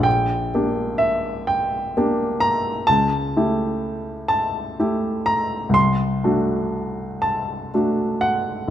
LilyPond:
\new Staff \with { instrumentName = "Grand piano" } { \time 6/8 \key a \phrygian \tempo 4. = 42 << { g''4 e''8 g''4 bes''8 | a''4. a''4 bes''8 | c'''4. a''8 r8 fis''8 | } \\ { bes,,8 <bes d' g'>4. <bes d' g'>4 | cis,8 <a e' g'>4. <a e' g'>4 | c,8 <a d' fis'>4. <a d' fis'>4 | } >> }